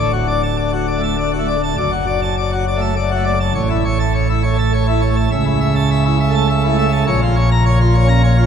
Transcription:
Already playing: D1 D2 D5
0.13 F#4
0.28 D5
0.43 A5
0.57 D5
0.72 F#4
0.88 D5
0.97 A3
1.03 A5
1.18 D5
1.33 F#4
1.39 A3
1.48 D5
1.63 A5
1.77 F#1 F#2 D5
1.92 F#4
2.07 D5
2.22 A5
2.38 D5
2.52 F#4
2.68 D5
2.77 A3
2.81 A5
2.96 D5
3.11 F#4
3.15 A3
3.25 D5
3.40 A5
3.55 A1 A2 C#5
3.70 E4
3.85 C#5
3.99 A5
4.14 C#5
4.29 E4
4.43 C#5
4.53 A3
4.59 A5
4.73 C#5
4.87 E4
4.92 A3
5.02 C#5
5.16 A5
5.31 C#2 C#3 E5
5.45 E4
5.61 E5
5.76 A5
5.91 E5
6.05 E4
6.20 E5
6.30 A3
6.35 A5
6.49 E5
6.63 E4
6.69 A3
6.79 E5
6.92 A5
7.07 A#1 A#2 C#5
7.22 F4
7.36 C#5
7.52 A#5
7.66 C#5
7.81 F4
7.95 C#5
8.04 C#4
8.09 A#5
8.24 C#5
8.38 F4
8.43 C#4

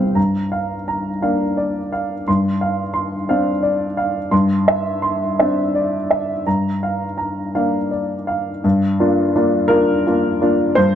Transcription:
Already playing: C2 G2 G3 C5 F5 G5
0.00 C4
0.15 G2 A#5
0.52 F5
0.88 A#5
1.22 A#3 D4 F5
1.57 D5
1.92 F5
2.28 G2 C6
2.61 F5
2.94 C6
3.29 C4 D4 F5
3.63 D5
3.97 F5
4.31 G2 C6
4.68 E5
5.02 C6
5.39 C4 D4 E5
5.75 D5
6.11 E5
6.46 G2 A#5
6.83 F5
7.18 A#5
7.55 A#3 D4 F5
7.91 D5
8.27 F5
8.64 G2
9.00 A#3 D4 F4
9.36 A#3 D4 F4
9.68 A#3 D4 F4 A#4
10.07 A#3 D4 F4
10.41 A#3 D4 F4
10.75 G2 C5

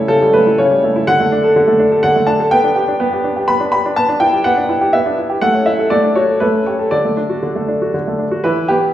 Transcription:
Already playing: C#3 G3 A3 E4 C#5
0.08 C#3 A4
0.22 G3
0.33 A3 B4
0.46 E4
0.58 C#3 C#5
0.71 G3
0.84 A3
0.96 E4
1.07 D3 F#5
1.20 A3
1.32 D4
1.44 A4
1.56 D3
1.67 A3
1.79 D4
1.92 A4
2.03 D3 F#5
2.16 A3
2.27 D4 A5
2.40 A4
2.51 B3 G5
2.64 D4
2.76 G4
2.88 D4
3.00 B3
3.13 G4
3.24 D4
3.36 G4
3.48 B3 B5
3.60 D4
3.72 G4 B5
3.86 D4
3.96 B3 A5
4.09 D4
4.20 E4 G5
4.33 G4
4.44 B3 F#5
4.57 D4
4.69 E4
4.81 G4
4.93 B3 E5
5.06 D4
5.18 E4
5.30 G4
5.41 A3 F#5
5.54 C#4
5.66 E4 E5
5.79 A4
5.90 A3 D5
6.04 D4
6.15 F#4 C#5
6.28 A4
6.40 A3 B4
6.54 C#4
6.66 G4 C#5
6.79 A4
6.91 D3 D5
7.05 A3
7.17 D4
7.30 F#4
7.43 D3
7.55 A3
7.68 D4
7.82 F#4
7.94 D3
8.07 A3
8.19 D4
8.31 F#4
8.44 E3 E4 B4
8.68 B3 G4

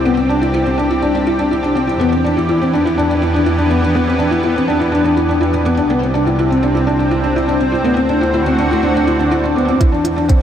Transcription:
Already playing: C2 C3 C4 G4 D5
0.05 B3
0.17 C4
0.29 D4
0.41 E4
0.54 E4
0.66 C4
0.78 D4
0.91 E4
1.02 D4
1.15 D4
1.27 E4
1.39 D4
1.51 E4
1.63 D4
1.75 C4
1.87 E4
2.00 E2 E3 B3
2.12 C4
2.24 D4
2.29 B3
2.37 E4
2.49 E4
2.61 C4
2.73 D4
2.86 E4
2.98 D4
3.10 D4
3.22 E4
3.34 D4
3.46 E4
3.58 D4
3.70 B3
3.82 D4
3.95 B3
4.07 C4
4.19 D4
4.31 E4
4.44 E4
4.56 C4
4.68 D4
4.80 E4
4.92 D4
5.04 D4
5.17 E4
5.29 D4
5.41 E4
5.53 D4
5.65 B3
5.77 D4
5.90 C2 C3 B3
6.02 C4
6.12 C4 D4
6.26 E4
6.39 E4
6.50 C4
6.63 D4
6.75 E4
6.87 D4
6.99 D4
7.11 E4
7.24 D4
7.36 E4
7.48 D4
7.60 C4
7.72 E4
7.84 D2 D3 B3
7.97 C4 F#4
8.09 D4
8.21 E4
8.34 E4
8.41 D5
8.46 C4
8.58 D4
8.71 E4
8.83 D4
8.95 D4
9.07 E4
9.19 D4
9.31 E4
9.44 D4
9.56 B3
9.68 C4
9.80 E2 E3 E4, kick, closed hi-hat
9.92 D4
10.04 E4, closed hi-hat
10.16 D4
10.29 B3 C4, kick, closed hi-hat

